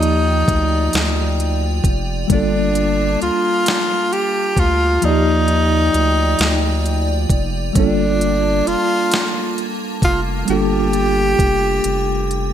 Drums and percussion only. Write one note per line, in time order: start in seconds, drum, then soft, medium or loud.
0.03 closed hi-hat medium
0.48 kick medium
0.48 closed hi-hat soft
0.93 snare loud
0.93 closed hi-hat medium
1.40 closed hi-hat soft
1.84 kick medium
1.84 closed hi-hat medium
2.30 kick medium
2.30 closed hi-hat medium
2.75 closed hi-hat medium
3.22 closed hi-hat soft
3.66 snare loud
3.66 closed hi-hat medium
4.13 closed hi-hat soft
4.57 kick medium
4.57 closed hi-hat medium
5.02 closed hi-hat medium
5.48 closed hi-hat medium
5.94 closed hi-hat soft
6.39 snare loud
6.39 closed hi-hat medium
6.86 closed hi-hat soft
7.30 kick medium
7.30 closed hi-hat medium
7.75 kick loud
7.75 closed hi-hat medium
8.21 closed hi-hat medium
8.67 closed hi-hat soft
9.12 snare loud
9.12 closed hi-hat medium
9.58 closed hi-hat soft
10.02 kick medium
10.02 closed hi-hat medium
10.48 closed hi-hat medium
10.93 closed hi-hat soft
11.39 kick medium
11.39 closed hi-hat soft
11.84 closed hi-hat medium
12.31 closed hi-hat soft